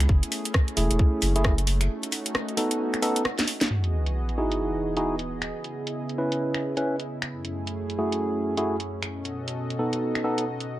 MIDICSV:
0, 0, Header, 1, 6, 480
1, 0, Start_track
1, 0, Tempo, 451128
1, 98, Time_signature, 4, 2, 24, 8
1, 11487, End_track
2, 0, Start_track
2, 0, Title_t, "Tine electric piano"
2, 0, Program_c, 0, 4
2, 818, Note_on_c, 0, 57, 78
2, 818, Note_on_c, 0, 64, 72
2, 818, Note_on_c, 0, 68, 86
2, 1408, Note_off_c, 0, 64, 0
2, 1409, Note_off_c, 0, 57, 0
2, 1409, Note_off_c, 0, 68, 0
2, 1442, Note_on_c, 0, 57, 87
2, 1443, Note_on_c, 0, 64, 78
2, 1443, Note_on_c, 0, 68, 96
2, 1632, Note_off_c, 0, 57, 0
2, 1632, Note_off_c, 0, 64, 0
2, 1632, Note_off_c, 0, 68, 0
2, 2737, Note_on_c, 0, 59, 79
2, 2737, Note_on_c, 0, 63, 73
2, 2737, Note_on_c, 0, 69, 86
2, 3198, Note_off_c, 0, 59, 0
2, 3198, Note_off_c, 0, 63, 0
2, 3198, Note_off_c, 0, 69, 0
2, 3217, Note_on_c, 0, 59, 89
2, 3217, Note_on_c, 0, 69, 99
2, 3218, Note_on_c, 0, 63, 79
2, 3424, Note_off_c, 0, 59, 0
2, 3424, Note_off_c, 0, 69, 0
2, 3425, Note_off_c, 0, 63, 0
2, 4658, Note_on_c, 0, 63, 75
2, 4658, Note_on_c, 0, 64, 67
2, 4658, Note_on_c, 0, 66, 67
2, 4658, Note_on_c, 0, 68, 81
2, 5248, Note_off_c, 0, 68, 0
2, 5249, Note_off_c, 0, 63, 0
2, 5249, Note_off_c, 0, 64, 0
2, 5249, Note_off_c, 0, 66, 0
2, 5285, Note_on_c, 0, 66, 74
2, 5286, Note_on_c, 0, 63, 80
2, 5286, Note_on_c, 0, 64, 73
2, 5286, Note_on_c, 0, 68, 88
2, 5473, Note_off_c, 0, 66, 0
2, 5474, Note_off_c, 0, 63, 0
2, 5474, Note_off_c, 0, 64, 0
2, 5474, Note_off_c, 0, 68, 0
2, 6578, Note_on_c, 0, 64, 68
2, 6579, Note_on_c, 0, 61, 74
2, 6579, Note_on_c, 0, 71, 81
2, 7169, Note_off_c, 0, 61, 0
2, 7169, Note_off_c, 0, 64, 0
2, 7169, Note_off_c, 0, 71, 0
2, 7203, Note_on_c, 0, 61, 81
2, 7203, Note_on_c, 0, 64, 72
2, 7203, Note_on_c, 0, 71, 89
2, 7392, Note_off_c, 0, 61, 0
2, 7392, Note_off_c, 0, 64, 0
2, 7392, Note_off_c, 0, 71, 0
2, 8497, Note_on_c, 0, 57, 73
2, 8497, Note_on_c, 0, 64, 69
2, 8497, Note_on_c, 0, 66, 70
2, 8497, Note_on_c, 0, 68, 83
2, 9088, Note_off_c, 0, 57, 0
2, 9088, Note_off_c, 0, 64, 0
2, 9088, Note_off_c, 0, 66, 0
2, 9088, Note_off_c, 0, 68, 0
2, 9122, Note_on_c, 0, 66, 75
2, 9123, Note_on_c, 0, 57, 79
2, 9123, Note_on_c, 0, 64, 73
2, 9123, Note_on_c, 0, 68, 90
2, 9312, Note_off_c, 0, 57, 0
2, 9312, Note_off_c, 0, 64, 0
2, 9312, Note_off_c, 0, 66, 0
2, 9312, Note_off_c, 0, 68, 0
2, 10418, Note_on_c, 0, 59, 74
2, 10418, Note_on_c, 0, 63, 68
2, 10418, Note_on_c, 0, 69, 83
2, 10879, Note_off_c, 0, 59, 0
2, 10879, Note_off_c, 0, 63, 0
2, 10879, Note_off_c, 0, 69, 0
2, 10897, Note_on_c, 0, 59, 83
2, 10897, Note_on_c, 0, 63, 74
2, 10897, Note_on_c, 0, 69, 91
2, 11104, Note_off_c, 0, 59, 0
2, 11104, Note_off_c, 0, 63, 0
2, 11104, Note_off_c, 0, 69, 0
2, 11487, End_track
3, 0, Start_track
3, 0, Title_t, "Analog synth pad"
3, 0, Program_c, 1, 89
3, 0, Note_on_c, 1, 64, 74
3, 0, Note_on_c, 1, 68, 89
3, 98, Note_on_c, 1, 61, 76
3, 100, Note_on_c, 1, 57, 81
3, 1976, Note_off_c, 1, 68, 0
3, 1979, Note_off_c, 1, 64, 0
3, 1999, Note_off_c, 1, 61, 0
3, 2020, Note_on_c, 1, 61, 76
3, 2020, Note_on_c, 1, 63, 75
3, 2020, Note_on_c, 1, 66, 92
3, 3900, Note_off_c, 1, 57, 0
3, 3920, Note_off_c, 1, 61, 0
3, 3920, Note_off_c, 1, 63, 0
3, 3920, Note_off_c, 1, 66, 0
3, 3939, Note_on_c, 1, 52, 78
3, 3939, Note_on_c, 1, 66, 74
3, 3939, Note_on_c, 1, 68, 88
3, 3940, Note_on_c, 1, 59, 72
3, 3940, Note_on_c, 1, 75, 72
3, 5839, Note_off_c, 1, 52, 0
3, 5839, Note_off_c, 1, 66, 0
3, 5856, Note_on_c, 1, 49, 79
3, 5858, Note_on_c, 1, 64, 72
3, 7740, Note_off_c, 1, 68, 0
3, 7741, Note_off_c, 1, 59, 0
3, 7741, Note_off_c, 1, 75, 0
3, 7758, Note_off_c, 1, 49, 0
3, 7772, Note_on_c, 1, 57, 73
3, 7772, Note_on_c, 1, 61, 73
3, 7773, Note_on_c, 1, 68, 88
3, 7774, Note_on_c, 1, 42, 79
3, 9659, Note_off_c, 1, 64, 0
3, 9676, Note_off_c, 1, 57, 0
3, 9676, Note_off_c, 1, 68, 0
3, 9677, Note_off_c, 1, 42, 0
3, 9697, Note_on_c, 1, 47, 79
3, 9697, Note_on_c, 1, 66, 72
3, 9697, Note_on_c, 1, 69, 86
3, 9697, Note_on_c, 1, 75, 73
3, 11487, Note_off_c, 1, 47, 0
3, 11487, Note_off_c, 1, 61, 0
3, 11487, Note_off_c, 1, 66, 0
3, 11487, Note_off_c, 1, 69, 0
3, 11487, Note_off_c, 1, 75, 0
3, 11487, End_track
4, 0, Start_track
4, 0, Title_t, "Sub bass"
4, 0, Program_c, 2, 38
4, 96, Note_on_c, 2, 30, 96
4, 228, Note_off_c, 2, 30, 0
4, 814, Note_on_c, 2, 28, 98
4, 947, Note_off_c, 2, 28, 0
4, 959, Note_on_c, 2, 28, 91
4, 1046, Note_off_c, 2, 28, 0
4, 1295, Note_on_c, 2, 30, 81
4, 2001, Note_off_c, 2, 30, 0
4, 11487, End_track
5, 0, Start_track
5, 0, Title_t, "Sub drop"
5, 0, Program_c, 3, 103
5, 3937, Note_on_c, 3, 60, 70
5, 5857, Note_off_c, 3, 60, 0
5, 11487, End_track
6, 0, Start_track
6, 0, Title_t, "Drums"
6, 4, Note_on_c, 9, 26, 63
6, 4, Note_on_c, 9, 42, 67
6, 97, Note_on_c, 9, 36, 114
6, 110, Note_off_c, 9, 26, 0
6, 110, Note_off_c, 9, 42, 0
6, 203, Note_off_c, 9, 36, 0
6, 245, Note_on_c, 9, 42, 56
6, 338, Note_on_c, 9, 46, 112
6, 351, Note_off_c, 9, 42, 0
6, 444, Note_off_c, 9, 46, 0
6, 483, Note_on_c, 9, 42, 72
6, 576, Note_on_c, 9, 36, 114
6, 577, Note_on_c, 9, 37, 114
6, 589, Note_off_c, 9, 42, 0
6, 682, Note_off_c, 9, 36, 0
6, 684, Note_off_c, 9, 37, 0
6, 723, Note_on_c, 9, 42, 39
6, 818, Note_on_c, 9, 46, 111
6, 830, Note_off_c, 9, 42, 0
6, 924, Note_off_c, 9, 46, 0
6, 964, Note_on_c, 9, 42, 70
6, 1057, Note_on_c, 9, 36, 113
6, 1070, Note_off_c, 9, 42, 0
6, 1163, Note_off_c, 9, 36, 0
6, 1298, Note_on_c, 9, 46, 110
6, 1404, Note_off_c, 9, 46, 0
6, 1444, Note_on_c, 9, 42, 72
6, 1536, Note_on_c, 9, 36, 112
6, 1538, Note_on_c, 9, 37, 114
6, 1550, Note_off_c, 9, 42, 0
6, 1643, Note_off_c, 9, 36, 0
6, 1644, Note_off_c, 9, 37, 0
6, 1684, Note_on_c, 9, 42, 55
6, 1778, Note_on_c, 9, 46, 110
6, 1791, Note_off_c, 9, 42, 0
6, 1884, Note_off_c, 9, 46, 0
6, 1924, Note_on_c, 9, 26, 64
6, 1924, Note_on_c, 9, 42, 70
6, 2030, Note_off_c, 9, 26, 0
6, 2030, Note_off_c, 9, 42, 0
6, 2163, Note_on_c, 9, 42, 55
6, 2258, Note_on_c, 9, 46, 115
6, 2270, Note_off_c, 9, 42, 0
6, 2365, Note_off_c, 9, 46, 0
6, 2404, Note_on_c, 9, 42, 70
6, 2498, Note_on_c, 9, 37, 114
6, 2510, Note_off_c, 9, 42, 0
6, 2604, Note_off_c, 9, 37, 0
6, 2644, Note_on_c, 9, 42, 38
6, 2738, Note_on_c, 9, 46, 109
6, 2751, Note_off_c, 9, 42, 0
6, 2844, Note_off_c, 9, 46, 0
6, 2884, Note_on_c, 9, 42, 66
6, 2990, Note_off_c, 9, 42, 0
6, 3125, Note_on_c, 9, 26, 53
6, 3125, Note_on_c, 9, 42, 39
6, 3218, Note_on_c, 9, 46, 110
6, 3232, Note_off_c, 9, 26, 0
6, 3232, Note_off_c, 9, 42, 0
6, 3325, Note_off_c, 9, 46, 0
6, 3364, Note_on_c, 9, 42, 68
6, 3459, Note_on_c, 9, 37, 114
6, 3470, Note_off_c, 9, 42, 0
6, 3565, Note_off_c, 9, 37, 0
6, 3604, Note_on_c, 9, 38, 73
6, 3604, Note_on_c, 9, 42, 54
6, 3698, Note_on_c, 9, 46, 111
6, 3710, Note_off_c, 9, 38, 0
6, 3710, Note_off_c, 9, 42, 0
6, 3804, Note_off_c, 9, 46, 0
6, 3844, Note_on_c, 9, 38, 98
6, 3844, Note_on_c, 9, 42, 69
6, 3950, Note_off_c, 9, 38, 0
6, 3950, Note_off_c, 9, 42, 0
6, 4084, Note_on_c, 9, 42, 52
6, 4190, Note_off_c, 9, 42, 0
6, 4324, Note_on_c, 9, 42, 63
6, 4431, Note_off_c, 9, 42, 0
6, 4564, Note_on_c, 9, 42, 35
6, 4670, Note_off_c, 9, 42, 0
6, 4804, Note_on_c, 9, 42, 63
6, 4911, Note_off_c, 9, 42, 0
6, 5284, Note_on_c, 9, 42, 63
6, 5390, Note_off_c, 9, 42, 0
6, 5523, Note_on_c, 9, 42, 50
6, 5630, Note_off_c, 9, 42, 0
6, 5764, Note_on_c, 9, 26, 67
6, 5764, Note_on_c, 9, 42, 63
6, 5870, Note_off_c, 9, 26, 0
6, 5870, Note_off_c, 9, 42, 0
6, 6004, Note_on_c, 9, 42, 50
6, 6111, Note_off_c, 9, 42, 0
6, 6244, Note_on_c, 9, 42, 63
6, 6351, Note_off_c, 9, 42, 0
6, 6484, Note_on_c, 9, 42, 35
6, 6590, Note_off_c, 9, 42, 0
6, 6723, Note_on_c, 9, 42, 61
6, 6830, Note_off_c, 9, 42, 0
6, 6963, Note_on_c, 9, 26, 54
6, 6963, Note_on_c, 9, 42, 34
6, 7070, Note_off_c, 9, 26, 0
6, 7070, Note_off_c, 9, 42, 0
6, 7203, Note_on_c, 9, 42, 60
6, 7309, Note_off_c, 9, 42, 0
6, 7443, Note_on_c, 9, 42, 49
6, 7550, Note_off_c, 9, 42, 0
6, 7683, Note_on_c, 9, 26, 66
6, 7683, Note_on_c, 9, 42, 60
6, 7789, Note_off_c, 9, 26, 0
6, 7789, Note_off_c, 9, 42, 0
6, 7923, Note_on_c, 9, 42, 49
6, 8029, Note_off_c, 9, 42, 0
6, 8163, Note_on_c, 9, 42, 62
6, 8269, Note_off_c, 9, 42, 0
6, 8403, Note_on_c, 9, 42, 34
6, 8509, Note_off_c, 9, 42, 0
6, 8644, Note_on_c, 9, 42, 59
6, 8750, Note_off_c, 9, 42, 0
6, 9123, Note_on_c, 9, 42, 62
6, 9229, Note_off_c, 9, 42, 0
6, 9363, Note_on_c, 9, 42, 48
6, 9469, Note_off_c, 9, 42, 0
6, 9603, Note_on_c, 9, 26, 64
6, 9603, Note_on_c, 9, 42, 59
6, 9709, Note_off_c, 9, 26, 0
6, 9709, Note_off_c, 9, 42, 0
6, 9843, Note_on_c, 9, 42, 51
6, 9950, Note_off_c, 9, 42, 0
6, 10084, Note_on_c, 9, 42, 63
6, 10190, Note_off_c, 9, 42, 0
6, 10325, Note_on_c, 9, 42, 35
6, 10431, Note_off_c, 9, 42, 0
6, 10565, Note_on_c, 9, 42, 60
6, 10671, Note_off_c, 9, 42, 0
6, 10803, Note_on_c, 9, 26, 51
6, 10803, Note_on_c, 9, 42, 34
6, 10910, Note_off_c, 9, 26, 0
6, 10910, Note_off_c, 9, 42, 0
6, 11044, Note_on_c, 9, 42, 63
6, 11150, Note_off_c, 9, 42, 0
6, 11283, Note_on_c, 9, 42, 48
6, 11389, Note_off_c, 9, 42, 0
6, 11487, End_track
0, 0, End_of_file